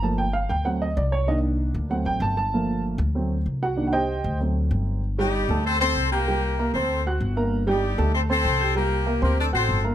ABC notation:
X:1
M:4/4
L:1/8
Q:1/4=192
K:Gm
V:1 name="Upright piano"
a g f g ^f e d ^c | e z3 ^f g a a- | a2 z4 z [^F^f]- | [^F^f] [Gcefg]3 z4 |
z [G,Gg]2 [A,Aa]2 [Ccc']2 [Ggg'] | [G,Gg]2 [B,Bb] [Ccc']2 [^F^f^f']2 [B,Bb]- | [B,Bb] [G,Gg]2 [A,Aa]2 [Ccc']2 [Ggg'] | [G,Gg]2 [B,Bb] [Ccc']2 [^F^f^f']2 [B,Bb] |]
V:2 name="Upright piano"
[F,A,B,] z3 [^F,A,C] z3 | [E,B,D]4 [^F,A,C]3 z | [F,A,B,]3 z [^F,A,C] z3 | [E,B,D] z3 [^F,A,C]4 |
z8 | z8 | z8 | z8 |]
V:3 name="Horn section"
z8 | z8 | z8 | z8 |
z [G,EG]3 [CAc] [CAc]2 [B,GB]- | [B,GB]3 [CAc]2 z3 | z [G,EG]3 [CAc] [CAc]3 | [B,GB]3 [B,GB] [DAd] [CAc]2 z |]
V:4 name="Upright bass" clef=bass
G,,,3 D,,3 C,,2- | C,,3 D,,2 A,,, G,,,2- | G,,,3 D,,3 C,,2- | C,,3 D,,3 G,,,2- |
G,,,3 D,,3 C,,2- | C,,3 D,,3 G,,,2- | G,,,3 D,,3 C,,2- | C,,3 D,,2 A,,, G,,,2 |]